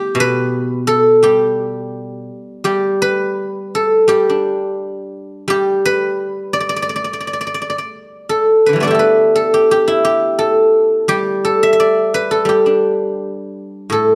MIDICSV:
0, 0, Header, 1, 2, 480
1, 0, Start_track
1, 0, Tempo, 710059
1, 824, Time_signature, 2, 2, 24, 8
1, 3236, Tempo, 697674
1, 8516, Tempo, 716846
1, 9647, End_track
2, 0, Start_track
2, 0, Title_t, "Guzheng"
2, 0, Program_c, 0, 107
2, 0, Note_on_c, 0, 55, 39
2, 0, Note_on_c, 0, 57, 43
2, 0, Note_on_c, 0, 59, 45
2, 0, Note_on_c, 0, 62, 45
2, 0, Note_on_c, 0, 64, 51
2, 0, Note_on_c, 0, 67, 87
2, 0, Note_on_c, 0, 69, 70
2, 100, Note_on_c, 0, 47, 58
2, 136, Note_on_c, 0, 71, 89
2, 218, Note_off_c, 0, 69, 0
2, 590, Note_on_c, 0, 69, 83
2, 630, Note_off_c, 0, 55, 0
2, 713, Note_off_c, 0, 64, 0
2, 817, Note_off_c, 0, 62, 0
2, 829, Note_on_c, 0, 55, 56
2, 832, Note_off_c, 0, 67, 0
2, 835, Note_on_c, 0, 67, 72
2, 999, Note_off_c, 0, 59, 0
2, 1129, Note_off_c, 0, 57, 0
2, 1518, Note_off_c, 0, 71, 0
2, 1541, Note_off_c, 0, 47, 0
2, 1778, Note_off_c, 0, 55, 0
2, 1786, Note_on_c, 0, 55, 52
2, 1787, Note_off_c, 0, 67, 0
2, 1789, Note_on_c, 0, 67, 68
2, 2040, Note_on_c, 0, 71, 76
2, 2073, Note_off_c, 0, 69, 0
2, 2534, Note_on_c, 0, 69, 71
2, 2750, Note_off_c, 0, 55, 0
2, 2756, Note_on_c, 0, 55, 56
2, 2760, Note_off_c, 0, 67, 0
2, 2763, Note_on_c, 0, 67, 68
2, 2904, Note_on_c, 0, 62, 38
2, 3426, Note_off_c, 0, 71, 0
2, 3702, Note_off_c, 0, 55, 0
2, 3711, Note_on_c, 0, 55, 58
2, 3724, Note_off_c, 0, 67, 0
2, 3727, Note_on_c, 0, 67, 82
2, 3850, Note_off_c, 0, 62, 0
2, 3971, Note_on_c, 0, 71, 88
2, 4032, Note_off_c, 0, 69, 0
2, 4437, Note_on_c, 0, 74, 82
2, 4484, Note_off_c, 0, 74, 0
2, 4487, Note_on_c, 0, 74, 58
2, 4544, Note_off_c, 0, 74, 0
2, 4547, Note_on_c, 0, 74, 66
2, 4593, Note_off_c, 0, 74, 0
2, 4596, Note_on_c, 0, 74, 55
2, 4634, Note_off_c, 0, 74, 0
2, 4637, Note_on_c, 0, 74, 55
2, 4682, Note_off_c, 0, 74, 0
2, 4684, Note_on_c, 0, 74, 48
2, 4726, Note_off_c, 0, 74, 0
2, 4729, Note_on_c, 0, 74, 58
2, 4786, Note_off_c, 0, 74, 0
2, 4788, Note_on_c, 0, 74, 49
2, 4847, Note_off_c, 0, 74, 0
2, 4850, Note_on_c, 0, 74, 43
2, 4897, Note_off_c, 0, 74, 0
2, 4900, Note_on_c, 0, 74, 39
2, 4943, Note_off_c, 0, 74, 0
2, 4946, Note_on_c, 0, 74, 44
2, 4985, Note_off_c, 0, 74, 0
2, 4988, Note_on_c, 0, 74, 44
2, 5036, Note_off_c, 0, 74, 0
2, 5039, Note_on_c, 0, 74, 54
2, 5078, Note_off_c, 0, 74, 0
2, 5080, Note_on_c, 0, 74, 48
2, 5130, Note_off_c, 0, 74, 0
2, 5132, Note_on_c, 0, 74, 57
2, 5151, Note_off_c, 0, 55, 0
2, 5180, Note_off_c, 0, 74, 0
2, 5183, Note_on_c, 0, 74, 44
2, 5235, Note_off_c, 0, 74, 0
2, 5238, Note_on_c, 0, 74, 49
2, 5295, Note_off_c, 0, 74, 0
2, 5297, Note_on_c, 0, 74, 42
2, 5347, Note_off_c, 0, 67, 0
2, 5378, Note_off_c, 0, 71, 0
2, 5649, Note_on_c, 0, 69, 64
2, 5903, Note_on_c, 0, 71, 58
2, 5920, Note_on_c, 0, 50, 27
2, 5949, Note_on_c, 0, 52, 30
2, 5967, Note_on_c, 0, 55, 33
2, 5998, Note_on_c, 0, 57, 35
2, 6002, Note_on_c, 0, 59, 40
2, 6012, Note_off_c, 0, 74, 0
2, 6015, Note_on_c, 0, 74, 63
2, 6027, Note_on_c, 0, 62, 43
2, 6048, Note_on_c, 0, 64, 44
2, 6068, Note_off_c, 0, 52, 0
2, 6069, Note_on_c, 0, 67, 48
2, 6089, Note_off_c, 0, 50, 0
2, 6094, Note_off_c, 0, 69, 0
2, 6097, Note_on_c, 0, 69, 45
2, 6126, Note_off_c, 0, 71, 0
2, 6129, Note_on_c, 0, 71, 59
2, 6138, Note_off_c, 0, 55, 0
2, 6376, Note_off_c, 0, 69, 0
2, 6379, Note_on_c, 0, 69, 68
2, 6502, Note_off_c, 0, 67, 0
2, 6505, Note_on_c, 0, 67, 62
2, 6622, Note_off_c, 0, 67, 0
2, 6625, Note_on_c, 0, 67, 75
2, 6734, Note_off_c, 0, 64, 0
2, 6737, Note_on_c, 0, 64, 63
2, 6851, Note_off_c, 0, 67, 0
2, 6854, Note_on_c, 0, 67, 70
2, 7086, Note_off_c, 0, 69, 0
2, 7088, Note_on_c, 0, 69, 69
2, 7286, Note_off_c, 0, 74, 0
2, 7536, Note_off_c, 0, 71, 0
2, 7567, Note_on_c, 0, 55, 58
2, 7568, Note_off_c, 0, 67, 0
2, 7571, Note_on_c, 0, 67, 81
2, 7815, Note_off_c, 0, 69, 0
2, 7817, Note_on_c, 0, 69, 68
2, 7943, Note_on_c, 0, 76, 80
2, 7953, Note_off_c, 0, 62, 0
2, 8008, Note_off_c, 0, 76, 0
2, 8011, Note_on_c, 0, 76, 59
2, 8059, Note_on_c, 0, 74, 70
2, 8134, Note_off_c, 0, 59, 0
2, 8287, Note_off_c, 0, 57, 0
2, 8296, Note_on_c, 0, 71, 74
2, 8409, Note_off_c, 0, 69, 0
2, 8412, Note_on_c, 0, 69, 65
2, 8500, Note_off_c, 0, 55, 0
2, 8508, Note_on_c, 0, 55, 48
2, 8531, Note_off_c, 0, 64, 0
2, 8532, Note_off_c, 0, 67, 0
2, 8534, Note_on_c, 0, 67, 57
2, 8649, Note_on_c, 0, 62, 33
2, 9177, Note_off_c, 0, 76, 0
2, 9308, Note_off_c, 0, 74, 0
2, 9477, Note_on_c, 0, 45, 44
2, 9492, Note_off_c, 0, 69, 0
2, 9495, Note_on_c, 0, 69, 66
2, 9606, Note_off_c, 0, 62, 0
2, 9647, Note_off_c, 0, 45, 0
2, 9647, Note_off_c, 0, 55, 0
2, 9647, Note_off_c, 0, 67, 0
2, 9647, Note_off_c, 0, 69, 0
2, 9647, Note_off_c, 0, 71, 0
2, 9647, End_track
0, 0, End_of_file